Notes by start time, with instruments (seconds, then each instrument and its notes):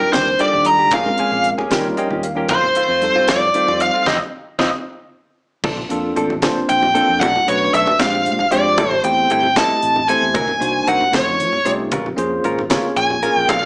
Already playing: tine electric piano G3 D4 D#4 F4 A#4, lead electric guitar A#4
0.00 clean electric guitar D4 G4, low conga
0.12 fretless electric bass D#2, clean electric guitar A#3 D4 G4, lead electric guitar C5, snare, closed hi-hat, high conga
0.38 tine electric piano G3 D4 D#4 F4 A4, clean electric guitar A#3 D4 G4, lead electric guitar D5, closed hi-hat
0.53 fretless electric bass D#2, clean electric guitar D4 G4, low conga
0.65 lead electric guitar A#5, closed hi-hat
0.79 clean electric guitar D4 G4
0.91 fretless electric bass A#1, clean electric guitar F3 A#3 C#4 G#4, lead electric guitar F5, kick, closed hi-hat, high conga
1.05 tine electric piano G#3 C4 C#4 F4 A#4, low conga
1.18 clean electric guitar F3 A#3 C#4 G#4, muted fretless electric bass stroke, closed hi-hat, low conga
1.31 fretless electric bass A#1, clean electric guitar A#3 C#4 G#4
1.44 closed hi-hat
1.58 clean electric guitar A#3 C#4 G#4, low conga
1.70 fretless electric bass D#2, clean electric guitar F3 A#3 C#4 G4, tine electric piano G3 C#4 D#4 F4 A#4, snare, closed hi-hat, high conga
1.97 clean electric guitar F3 A#3 C#4 G4, tine electric piano D#5, closed hi-hat
2.10 fretless electric bass D#2, clean electric guitar A#3 C#4 G4, low conga
2.23 tine electric piano F5, closed hi-hat
2.35 tine electric piano G3 C#4 D#4 F4 A#4, clean electric guitar A#3 C#4 G4
2.49 fretless electric bass F2, clean electric guitar D#3 A3 C4 F4, lead electric guitar C5, kick, closed hi-hat, high conga
2.64 low conga
2.75 clean electric guitar D#3 A3 C4 F4, muted fretless electric bass stroke, closed hi-hat, low conga
2.88 fretless electric bass F2, clean electric guitar A3 C4 F4
3.02 tine electric piano G3 C4 D#4 F4 A4, closed hi-hat
3.16 clean electric guitar A3 C4 F4, low conga
3.28 fretless electric bass F2, clean electric guitar D#3 A3 C4 F4, lead electric guitar D5, snare, closed hi-hat, high conga
3.54 clean electric guitar D#3 A3 C4 F4, tine electric piano G3 C4 D#4 F4 C5, closed hi-hat
3.68 fretless electric bass F2, clean electric guitar A3 C4 F4, low conga
3.80 lead electric guitar F5, closed hi-hat
3.94 clean electric guitar A3 C4 F4
4.06 fretless electric bass F2, clean electric guitar C4 D#4 F4, tine electric piano C4 D#4 F4, lead electric guitar C5 D#5 F5, kick, snare, high conga
4.59 fretless electric bass F2, clean electric guitar C4 D#4 F4, tine electric piano C4 D#4 F4, lead electric guitar C5 D#5 F5, kick, snare, high conga
5.64 fretless electric bass A#1, clean electric guitar F3 C4 D4 A4, kick, crash, high conga
5.77 low conga
5.89 fretless electric bass F2, tine electric piano A#3 C4 D4 F4 A4, closed hi-hat
6.16 fretless electric bass A1, clean electric guitar F3 C4 D4 A4, closed hi-hat
6.30 low conga
6.42 clean electric guitar F3 C4 D4 A4, tine electric piano A#3 C4 D4 F4 C5, kick, snare, closed hi-hat, high conga
6.56 muted fretless electric bass stroke
6.69 fretless electric bass A#1, lead electric guitar G5, closed hi-hat, low conga
6.83 low conga
6.95 tine electric piano A#3 C4 D4 F4 A4, clean electric guitar C4 D4 A4, closed hi-hat
7.09 fretless electric bass F2
7.20 fretless electric bass B1, clean electric guitar F#3 C#4 D4 A4, lead electric guitar F#5, kick, closed hi-hat, high conga
7.36 low conga
7.47 fretless electric bass B1, tine electric piano A3 C#4 D4 F#4 B4, lead electric guitar C#5, closed hi-hat
7.73 fretless electric bass B1, clean electric guitar F#3 C#4 D4 A4, lead electric guitar E5, closed hi-hat
7.87 low conga
7.99 fretless electric bass A#1, tine electric piano G#3 D4 F4 G4 C5, clean electric guitar G#3 C4 D4 G4, lead electric guitar F5, kick, snare, closed hi-hat, high conga
8.26 fretless electric bass A#2, closed hi-hat, low conga
8.39 low conga
8.51 fretless electric bass F2, tine electric piano G#3 D4 F4 G4 C5, clean electric guitar C4 D4 G4, lead electric guitar D5, closed hi-hat
8.78 fretless electric bass A1, clean electric guitar G3 C4 E4 A4, kick, closed hi-hat, high conga
8.91 low conga
9.03 fretless electric bass E2, tine electric piano A3 C4 E4 G4 C5, lead electric guitar G5, closed hi-hat
9.30 fretless electric bass G1, clean electric guitar G3 C4 E4 A4, lead electric guitar G5, closed hi-hat
9.43 low conga
9.56 clean electric guitar G3 C4 E4 A4, tine electric piano A3 C4 E4 G4 D#5, lead electric guitar A5, kick, snare, closed hi-hat, high conga
9.69 muted fretless electric bass stroke
9.83 fretless electric bass A1, closed hi-hat, low conga
9.96 low conga
10.08 tine electric piano A3 C4 E4 G4 C5, clean electric guitar C4 E4 A4, lead electric guitar G#5, closed hi-hat
10.21 fretless electric bass E2
10.34 fretless electric bass C2, clean electric guitar F#3 C4 D#4 A#4, kick, closed hi-hat, high conga, low conga
10.48 low conga
10.59 fretless electric bass C2, tine electric piano A#3 D4 D#4 F#4 C5, closed hi-hat, low conga
10.87 fretless electric bass C2, clean electric guitar F#3 C4 D#4 A#4, lead electric guitar F#5, closed hi-hat
11.01 low conga
11.11 fretless electric bass F2, tine electric piano A3 C#4 D#4 F4 C#5, clean electric guitar C#4 D#4 A4 C5, lead electric guitar C#5, kick, snare, closed hi-hat, high conga, low conga
11.40 fretless electric bass F3, closed hi-hat
11.53 muted fretless electric bass stroke, low conga
11.65 fretless electric bass C2, tine electric piano A3 C#4 D#4 F4 G4, clean electric guitar D#4 A4 C5, closed hi-hat
11.91 fretless electric bass A#1, clean electric guitar G#3 C#4 F4 A#4, kick, closed hi-hat, high conga
12.06 low conga
12.16 fretless electric bass F2, tine electric piano A#3 C#4 F4 G#4 C5, closed hi-hat
12.44 fretless electric bass G#1, clean electric guitar G#3 C#4 F4 A#4, closed hi-hat
12.59 low conga
12.70 clean electric guitar G#3 C#4 F4 A#4, tine electric piano A#3 C#4 F4 G#4 C#5, kick, snare, closed hi-hat, high conga
12.96 fretless electric bass A#1, lead electric guitar G#5, closed hi-hat
13.10 low conga
13.23 tine electric piano A#3 C#4 F4 G#4 A#4, clean electric guitar C#4 F4 A#4, closed hi-hat
13.36 fretless electric bass A#1, lead electric guitar G5
13.49 fretless electric bass B1, clean electric guitar F3 B3 D4 A4, lead electric guitar F5, kick, closed hi-hat, high conga